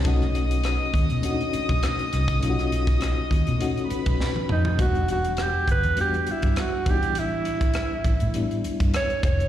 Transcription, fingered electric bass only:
X:1
M:4/4
L:1/16
Q:"Swing 16ths" 1/4=101
K:Bm
V:1 name="Fingered electric bass" clef=bass
B,,,4- B,,, z ^D,, B,, z3 B,,, z2 =C,,2 | B,,,4- B,,, z ^D,, B,, z3 B,,, z2 =F,,2 | E,,,4- E,,, z G,,, E,, z3 G,, z2 A,,,2- | A,,,4- A,,, z A,,, A,, z3 G,, z2 =F,,,2 |]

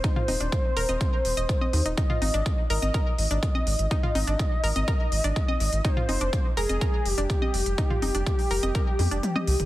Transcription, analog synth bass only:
X:1
M:4/4
L:1/16
Q:1/4=124
K:Ablyd
V:1 name="Analog synth bass" clef=bass
z2 E,,, E,,, z2 E,,, E,,, z2 E,,, E,,, z2 E,, E,,, | z2 A,,, A,,, z2 A,,, A,,, z2 A,,, A,,, z2 A,,, A,,, | z2 A,,, A,,, z2 A,,, A,,, z2 A,,, A,,, z2 A,,, A,,, | z2 F,,, F,,, z2 F,,, F,,, z2 F,,, F,,, z2 F,,, F,,, |
z2 F,,, F,,, z2 F,,, F,,, z2 F,, F,,, z2 C,, F,,, |]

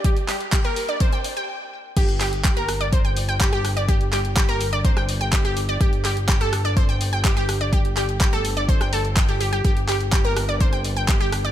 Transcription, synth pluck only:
X:1
M:4/4
L:1/16
Q:1/4=125
K:Gm
V:1 name="Synth pluck"
G z G z G B z d c g z g z4 | [Gg] z [Gg] z [Gg] [Bb] z [dd'] [cc'] [gg'] z [gg'] [Gg] [Gg] z [dd'] | [Gg] z [Gg] z [Gg] [Bb] z [dd'] [cc'] [gg'] z [gg'] [Gg] [Gg] z [dd'] | [Gg] z [Gg] z [Gg] [Aa] z [dd'] [cc'] [gg'] z [gg'] [Gg] [Gg] z [dd'] |
[Gg] z [Gg] z [Gg] [Aa] z [dd'] [cc'] [gg'] [Aa] z [gg'] [Gg] [Gg] [Gg] | [Gg] z [Gg] z [Gg] [Bb] z [dd'] [cc'] [gg'] z [gg'] [Gg] [Gg] z [dd'] |]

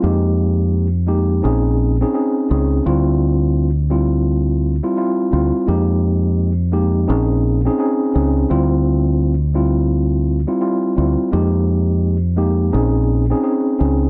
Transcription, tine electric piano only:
X:1
M:4/4
L:1/16
Q:"Swing 16ths" 1/4=85
K:F
V:1 name="Tine electric piano"
[_A,B,_EG]4- [A,B,EG] z [A,B,EG]2 [C_DE_A]3 [CDEA] [CDEA]2 [CDEA]2 | [G,CEF]4- [G,CEF] z [G,CEF]4- [G,CEF] [G,CEF] [G,CEF]2 [G,CEF]2 | [_A,B,_EG]4- [A,B,EG] z [A,B,EG]2 [C_DE_A]3 [CDEA] [CDEA]2 [CDEA]2 | [G,CEF]4- [G,CEF] z [G,CEF]4- [G,CEF] [G,CEF] [G,CEF]2 [G,CEF]2 |
[_A,B,_EG]4- [A,B,EG] z [A,B,EG]2 [C_DE_A]3 [CDEA] [CDEA]2 [CDEA]2 |]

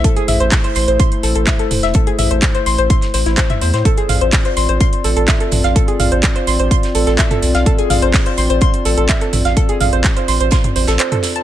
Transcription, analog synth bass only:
X:1
M:4/4
L:1/16
Q:1/4=126
K:Ddor
V:1 name="Analog synth bass" clef=bass
z2 A,,, A,,, z2 A,,, A,,, z2 A,,, A,,, z2 E,,, E,,, | z2 A,,, A,,, z2 A,,, A,,, z2 A,,, A,,, z2 E,, A,, | z2 A,,, A,,, z2 A,,, A,,, z2 A,,, A,,, z2 A,,, A,,, | z2 A,,, A,,, z2 A,,, A,,, z2 A,,, A,,, z2 B,,, B,,, |
z2 A,,, A,,, z2 A,,, A,,, z2 A,,, A,,, z2 A,,, A,,, | z2 A,,, A,,, z2 A,,, A,,, z2 A,,, A,,, z4 |]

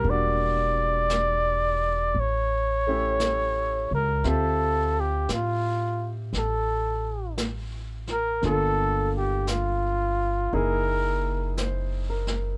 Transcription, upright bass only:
X:1
M:4/4
L:1/8
Q:"Swing" 1/4=57
K:Dm
V:1 name="Upright bass" clef=bass
E,,,4 A,,,3 ^C,, | D,,2 A,,2 A,,,4 | G,,,4 _G,,,4 |]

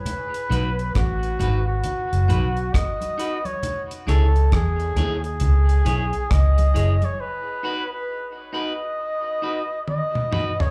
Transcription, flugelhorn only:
X:1
M:4/4
L:1/16
Q:"Swing 16ths" 1/4=67
K:Bmix
V:1 name="Flugelhorn"
B4 F3 F4- F d3 c- | c z A2 G3 G4- G d3 c | B3 B2 z d6 d3 c |]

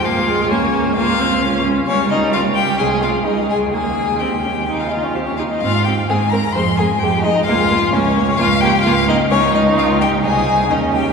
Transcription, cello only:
X:1
M:4/4
L:1/8
Q:1/4=130
K:Ab
V:1 name="Cello" clef=bass
D,,8 | D,,4 C,,2 D,,2 | E,,6- E,, z | A,,2 A,,2 F,,2 F,,2 |
D,,2 D,,2 D,,2 D,,2 | D,,4 C,,2 E,,2 |]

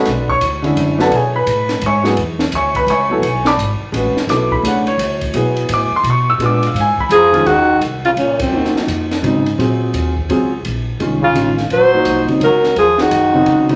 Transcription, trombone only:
X:1
M:3/4
L:1/8
Q:"Swing" 1/4=170
K:Bdor
V:1 name="Trombone" clef=bass
z6 | z6 | z6 | z6 |
z6 | z6 | z4 ^E,2 | [K:Ebdor] E,2 z D, B,, G,,- |
G,, z4 z | z6 | z3 D,2 z | G,3 z G,2 |
F, E,4 z |]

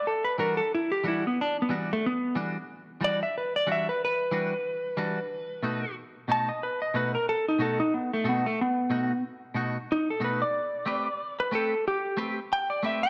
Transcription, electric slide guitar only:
X:1
M:4/4
L:1/16
Q:"Swing 16ths" 1/4=92
K:Em
V:1 name="Electric slide guitar"
A B ^A =A E G E B, D B, z A, B,2 z2 | z2 d e B d e B B8- | B4 z2 a ^d B d B ^A =A ^D A D | B, A, B, A, B,4 z4 ^D A B =d- |
d4- d B A2 G2 z2 g d e g |]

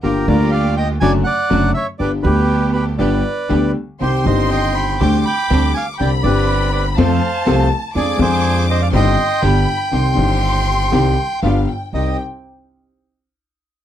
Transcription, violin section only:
X:1
M:4/4
L:1/8
Q:1/4=122
K:Cm
V:1 name="Violin section"
z8 | z8 | c'4 d'4 | =b4 =a4 |
d'4 c'2 =b2 | c'6 f g | g z6 z |]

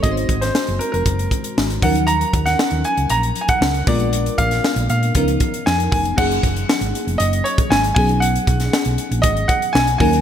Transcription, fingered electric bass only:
X:1
M:4/4
L:1/16
Q:1/4=117
K:Ebdor
V:1 name="Fingered electric bass" clef=bass
A,,,2 A,,,2 z G,,, z F,,, G,,,2 z2 A,,,2 E,,2- | E,,2 E,,2 z E,, z D,, B,,,2 z2 D,,2 B,,,2- | B,,,2 B,,,2 z B,,, B,,2 D,,2 z2 F,,2 F,,,2 | [K:Cblyd] G,,,2 G,,,2 z A,,, z F,,, G,,,2 z2 A,,,2 =B,,,2- |
=B,,,2 B,,,2 z B,,, z _B,,, ^G,,,2 z2 =B,,,2 E,,2 |]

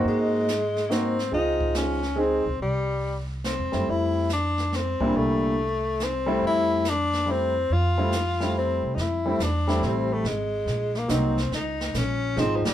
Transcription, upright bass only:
X:1
M:3/4
L:1/8
Q:"Swing" 1/4=141
K:F
V:1 name="Upright bass" clef=bass
_A,,6 | _D,,4- D,, D,, | C,,4- (3C,, E,, _G,, | F,,4- F,, z |
C,,6 | F,,6 | F,,4- F,, C, | F,,2 E,,2 A,,,2 |
_A,,,2 B,,,2 C,,2 | _D,,2 B,,,2 _A,,, z |]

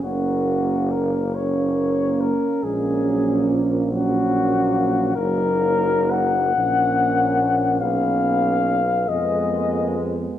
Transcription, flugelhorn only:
X:1
M:6/8
L:1/8
Q:3/8=47
K:F#
V:1 name="Flugelhorn"
F2 A c2 A | G2 z F3 | [K:Ebm] B2 g4 | f3 e2 z |]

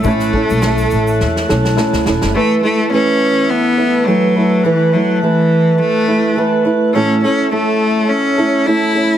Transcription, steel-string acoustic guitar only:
X:1
M:4/4
L:1/8
Q:"Swing 16ths" 1/4=104
K:Emix
V:1 name="Steel-string acoustic guitar"
[A,,E,A,CEA] [A,CEA] [A,CEA]3 [A,CEA] [A,CEA] [A,CEA] | [E,A,EB] [A,EB] [E,A,EB]3 [A,EB] [E,A,EB] [A,EB] | [E,A,EB] [A,EB] [E,A,EB]3 [A,EB] [E,A,EB] [A,EB] | [A,,E,A,CEA] [A,CEA] [A,CEA]3 [A,CEA] [A,CEA] [A,CEA] |]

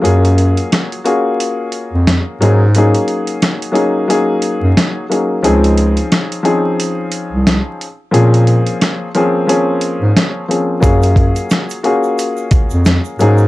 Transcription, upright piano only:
X:1
M:4/4
L:1/8
Q:"Swing 16ths" 1/4=89
K:Gblyd
V:1 name="Upright piano"
[G,B,DFA]3 [B,DFGA]4 [G,B,DEA] | [G,B,DEA]3 [G,B,DEA] [G,B,DEA]3 [G,B,DEA] | [F,CDEA]3 [F,CDEA]4 z | [F,B,CDA]3 [F,B,CDA] [F,B,CDA]3 [F,B,CDA] |
[G,B,DFA]3 [B,DFGA]4 [G,B,DEA] |]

